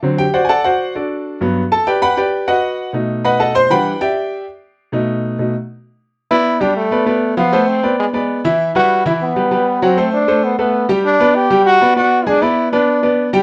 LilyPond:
<<
  \new Staff \with { instrumentName = "Grand piano" } { \time 4/4 \key e \minor \tempo 4 = 196 r8 <g' g''>8 <fis' c'' d'' fis''>8 <a' d'' fis'' gis'' a''>8 <fis' c'' d'' fis''>4 <d' fis' a' d''>4~ | <d' fis' a' d''>8 r4 <a' a''>8 <g' b' d'' g''>8 <b' fis'' g'' b''>8 <g' b' d'' g''>4 | <fis' b' dis'' fis''>4. r4 <b' dis'' fis'' b''>8 <a' dis'' fis'' a''>8 <c'' c'''>8 | <b' fis'' g'' b''>4 <g' d'' e'' g''>4. r4. |
r1 | r8 <b b' d''>4 <g g' g''>4 <b b' d''>8 <b b' d''>4 | <f f' f''>8 <a a' c''>4 <b b' d''>4 <b b' d''>4 <e e' e''>8~ | <e e' e''>8 <g e' b'>4 <e e' e''>4 <g g' b'>8 <g g' b'>4 |
<fis fis' fis''>8 <a a' c''>4 <a a' c''>4 <a a' b'>4 <g g' g''>8~ | <g g' g''>8 <b b' d''>4 <g g' g''>4 <b b' d''>8 <b b' d''>4 | <gis gis' gis''>8 <b b' d''>4 <b b' d''>4 <b b' d''>4 <g g' g''>8 | }
  \new Staff \with { instrumentName = "Grand piano" } { \clef bass \time 4/4 \key e \minor <d fis c'>8 r2. r8 | r8 <g, fis b>8 r2. | r4. <b, a dis'>2~ <b, a dis'>8 | <e g d'>8 r2. r8 |
<b, a dis'>4. <b, a dis'>8 r2 | r1 | r1 | r1 |
r1 | r1 | r1 | }
  \new Staff \with { instrumentName = "Trombone" } { \time 4/4 \key e \minor r1 | r1 | r1 | r1 |
r1 | r8 e'4 d'8 a2 | b4 c'4 gis8 gis4 r8 | r8 fis'4 e'8 b2 |
c'4 d'4 b8 b4 r8 | d'4 g'4 fis'4 fis'4 | d'8 e'4 d'2 r8 | }
>>